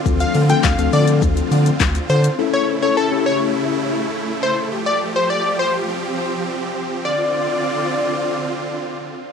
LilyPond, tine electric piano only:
\new Staff \with { instrumentName = "Tine electric piano" } { \time 4/4 \key d \minor \tempo 4 = 103 <f a c' d' a'>8 r16 <f a c' d' a'>8 <f a c' d' a'>4.~ <f a c' d' a'>16 r4 | <cis' e' a'>8 r16 <cis' e' a'>8 <cis' e' g'>4.~ <cis' e' g'>16 r4 | r1 | r1 | }